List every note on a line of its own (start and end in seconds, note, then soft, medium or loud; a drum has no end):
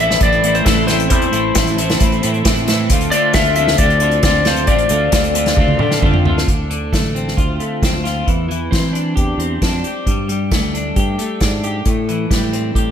0.00 0.16 A1 loud
0.00 0.19 A2 medium
0.00 0.20 E3 medium
0.00 0.21 A3 loud
0.00 0.22 C4 medium
0.00 0.22 E4 loud
0.00 0.22 E5 loud
0.11 snare medium
0.20 0.61 A1 medium
0.20 0.41 A2 medium
0.20 0.42 E3 medium
0.20 0.43 A3 medium
0.20 0.44 C4 medium
0.20 0.44 E4 medium
0.20 0.56 D5 medium
0.20 kick loud
0.20 closed hi-hat loud
0.32 closed hi-hat soft
0.42 0.63 A2 medium
0.42 0.64 E3 medium
0.42 0.65 A3 loud
0.42 0.66 C4 loud
0.42 0.65 E4 loud
0.42 closed hi-hat medium
0.55 0.65 C5 medium
0.55 closed hi-hat soft
0.64 1.11 A1 medium
0.64 0.86 A2 medium
0.64 0.87 E3 loud
0.64 0.88 A3 loud
0.64 0.89 C4 loud
0.64 0.89 E4 loud
0.64 0.87 A4 medium
0.64 kick loud
0.64 snare loud
0.64 closed hi-hat loud
0.87 1.08 A2 medium
0.87 1.09 E3 medium
0.87 1.10 A3 medium
0.87 1.11 C4 loud
0.87 1.10 E4 medium
0.87 1.09 C5 medium
0.87 snare medium
0.87 closed hi-hat medium
1.00 closed hi-hat medium
1.09 1.31 E2 loud
1.09 1.30 A2 loud
1.09 1.31 E3 medium
1.09 1.32 A3 medium
1.09 1.33 C4 loud
1.09 1.32 E4 medium
1.09 2.41 C5 medium
1.09 kick loud
1.09 closed hi-hat loud
1.22 closed hi-hat medium
1.31 1.53 A1 medium
1.31 1.53 A2 medium
1.31 1.54 E3 medium
1.31 1.55 A3 medium
1.31 1.56 C4 loud
1.31 1.55 E4 medium
1.31 closed hi-hat medium
1.54 1.95 A1 loud
1.54 1.76 A2 loud
1.54 1.76 E3 loud
1.54 1.77 A3 loud
1.54 1.78 C4 loud
1.54 1.78 E4 loud
1.54 kick loud
1.54 snare loud
1.54 closed hi-hat loud
1.67 closed hi-hat medium
1.77 1.98 A2 medium
1.77 1.98 E3 loud
1.77 1.99 A3 loud
1.77 2.00 C4 medium
1.77 2.00 E4 loud
1.77 closed hi-hat medium
1.90 snare medium
1.90 closed hi-hat medium
1.99 2.20 A1 medium
1.99 2.21 A2 medium
1.99 2.21 E3 medium
1.99 2.23 A3 loud
1.99 2.23 C4 loud
1.99 2.23 E4 loud
1.99 kick loud
1.99 closed hi-hat loud
2.12 closed hi-hat medium
2.22 2.43 A2 medium
2.22 2.43 A2 loud
2.22 2.43 E3 medium
2.22 2.45 A3 medium
2.22 2.45 C4 medium
2.22 2.45 E4 medium
2.22 closed hi-hat medium
2.34 closed hi-hat soft
2.44 2.65 A2 loud
2.44 2.90 A2 loud
2.44 2.66 E3 loud
2.44 2.68 A3 medium
2.44 2.68 C4 loud
2.44 2.68 E4 loud
2.44 kick loud
2.44 snare loud
2.44 closed hi-hat loud
2.57 closed hi-hat soft
2.66 2.88 A2 medium
2.66 2.88 E3 medium
2.66 2.90 A3 medium
2.66 2.91 C4 medium
2.66 2.89 E4 loud
2.66 snare medium
2.66 closed hi-hat medium
2.90 3.10 D2 loud
2.90 3.12 D3 medium
2.90 3.12 A3 medium
2.90 3.13 C4 medium
2.90 3.14 F4 loud
2.90 kick loud
2.90 closed hi-hat loud
3.01 closed hi-hat medium
3.11 3.34 D3 loud
3.11 3.35 A3 loud
3.11 3.36 C4 loud
3.11 3.36 F4 loud
3.11 3.34 D5 loud
3.11 closed hi-hat medium
3.33 3.74 D2 loud
3.33 3.56 D3 medium
3.33 3.57 A3 loud
3.33 3.57 C4 loud
3.33 3.58 F4 loud
3.33 3.55 E5 loud
3.33 kick loud
3.33 snare loud
3.33 closed hi-hat medium
3.44 closed hi-hat soft
3.56 3.78 D3 medium
3.56 3.79 A3 loud
3.56 3.80 C4 loud
3.56 3.80 F4 loud
3.56 3.78 E5 loud
3.56 closed hi-hat medium
3.68 snare medium
3.78 4.19 D2 medium
3.78 4.00 D3 medium
3.78 4.00 A3 medium
3.78 4.01 C4 medium
3.78 4.02 F4 medium
3.78 4.23 D5 medium
3.78 kick loud
3.78 closed hi-hat loud
3.90 closed hi-hat soft
4.00 4.23 D3 medium
4.00 4.24 A3 medium
4.00 4.24 C4 medium
4.00 4.25 F4 medium
4.00 closed hi-hat medium
4.11 closed hi-hat soft
4.23 4.68 D2 medium
4.23 4.44 D3 loud
4.23 4.45 A3 medium
4.23 4.46 C4 loud
4.23 4.47 F4 loud
4.23 4.47 D5 loud
4.23 kick loud
4.23 snare loud
4.23 closed hi-hat medium
4.45 4.66 D3 medium
4.45 4.67 A3 loud
4.45 4.68 C4 loud
4.45 4.68 F4 loud
4.45 4.70 C5 medium
4.45 snare medium
4.45 closed hi-hat medium
4.56 closed hi-hat soft
4.67 4.88 A1 loud
4.67 4.88 D3 medium
4.67 4.89 A3 loud
4.67 4.90 C4 loud
4.67 4.90 F4 medium
4.67 5.98 D5 loud
4.67 kick loud
4.67 closed hi-hat medium
4.78 closed hi-hat soft
4.89 5.11 D2 medium
4.89 5.10 D3 loud
4.89 5.11 A3 medium
4.89 5.12 C4 loud
4.89 5.12 F4 medium
4.89 closed hi-hat medium
5.12 5.53 D2 loud
5.12 5.33 D3 loud
5.12 5.34 A3 loud
5.12 5.34 C4 loud
5.12 5.35 F4 loud
5.12 kick loud
5.12 snare loud
5.12 closed hi-hat loud
5.24 closed hi-hat medium
5.34 5.56 D3 medium
5.34 5.56 A3 loud
5.34 5.57 C4 loud
5.34 5.57 F4 loud
5.34 closed hi-hat medium
5.46 snare medium
5.46 closed hi-hat medium
5.57 5.78 D2 medium
5.57 5.77 D3 medium
5.57 5.78 A3 loud
5.57 5.79 C4 medium
5.57 5.79 F4 medium
5.57 kick loud
5.57 high tom medium
5.68 high tom medium
5.78 6.00 D3 medium
5.78 6.01 A3 medium
5.78 6.02 C4 medium
5.78 6.02 F4 loud
5.78 mid tom medium
5.91 snare medium
6.01 6.24 D3 medium
6.01 6.43 D3 medium
6.01 6.24 A3 medium
6.01 6.25 C4 loud
6.01 6.26 F4 loud
6.01 kick loud
6.01 mid tom medium
6.14 mid tom medium
6.25 6.46 D3 medium
6.25 6.47 A3 medium
6.25 6.47 C4 medium
6.25 6.47 F4 loud
6.25 floor tom medium
6.38 snare medium
6.48 6.93 D2 medium
6.48 6.69 D3 medium
6.48 kick loud
6.48 closed hi-hat medium
6.70 7.82 D3 medium
6.70 closed hi-hat medium
6.93 7.33 A1 medium
6.93 7.59 A3 medium
6.93 kick medium
6.93 snare medium
6.93 closed hi-hat medium
7.15 7.82 C4 medium
7.15 closed hi-hat medium
7.28 snare soft
7.37 7.58 D2 medium
7.37 8.03 F4 medium
7.37 kick loud
7.37 closed hi-hat medium
7.60 8.27 A3 medium
7.60 closed hi-hat medium
7.82 8.23 D2 medium
7.82 8.28 C4 medium
7.82 kick loud
7.82 snare medium
7.82 closed hi-hat medium
8.04 8.27 F4 medium
8.04 snare soft
8.04 closed hi-hat soft
8.26 8.68 E2 medium
8.26 8.47 E3 medium
8.26 kick medium
8.26 closed hi-hat medium
8.49 9.61 E3 medium
8.49 closed hi-hat medium
8.71 9.12 E3 medium
8.71 9.38 C4 medium
8.71 kick loud
8.71 snare loud
8.71 closed hi-hat medium
8.93 9.61 D4 medium
8.93 closed hi-hat medium
9.16 9.37 E2 medium
9.16 9.84 G4 medium
9.16 kick loud
9.16 closed hi-hat medium
9.38 9.59 E2 medium
9.38 10.06 C4 medium
9.38 closed hi-hat medium
9.62 9.82 F2 medium
9.62 10.07 D4 medium
9.62 kick loud
9.62 snare medium
9.62 closed hi-hat medium
9.84 10.55 G4 medium
9.84 closed hi-hat medium
10.06 10.51 G2 loud
10.06 10.28 G3 medium
10.06 kick medium
10.06 closed hi-hat medium
10.29 11.41 G3 medium
10.29 closed hi-hat medium
10.51 10.91 D2 medium
10.51 11.18 A3 medium
10.51 kick loud
10.51 snare loud
10.51 closed hi-hat medium
10.74 11.39 D4 medium
10.74 closed hi-hat medium
10.96 11.16 G2 medium
10.96 11.63 G4 medium
10.96 kick loud
10.96 closed hi-hat medium
11.19 12.30 A3 medium
11.19 closed hi-hat medium
11.40 11.81 G#2 medium
11.40 11.85 D4 medium
11.40 kick medium
11.40 snare loud
11.40 closed hi-hat medium
11.63 11.86 G4 medium
11.63 closed hi-hat medium
11.85 12.26 A2 medium
11.85 12.91 A2 medium
11.85 kick medium
11.85 closed hi-hat medium
12.09 12.91 E3 medium
12.09 closed hi-hat medium
12.31 12.70 A2 medium
12.31 12.91 G3 medium
12.31 kick loud
12.31 snare medium
12.31 closed hi-hat medium
12.53 12.91 C4 medium
12.53 closed hi-hat medium
12.75 12.91 A2 medium
12.75 12.91 G4 medium
12.75 kick loud
12.75 closed hi-hat medium